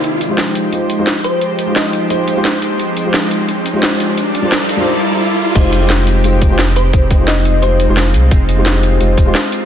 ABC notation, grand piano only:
X:1
M:4/4
L:1/16
Q:"Swing 16ths" 1/4=174
K:Fdor
V:1 name="Grand piano"
z3 [A,EFGc]4- [A,EFGc] [A,EFGc]3 [A,EFGc] z4 | z3 [A,EFGc]4- [A,EFGc] [A,EFGc]3 [A,EFGc] z4 | z3 [A,EFGc]4- [A,EFGc] z3 [A,EFGc]4- [A,EFGc] | z3 [G,DFGc] z3 [G,DFGc] z8 |
[A,EFGc]3 [A,EFGc]4- [A,EFGc] [A,EFGc]3 [A,EFGc] z4 | z3 [A,EFGc]4- [A,EFGc] [A,EFGc]3 [A,EFGc] z4 | z3 [A,EFGc]4- [A,EFGc] [A,EFGc]3 [A,EFGc] z4 |]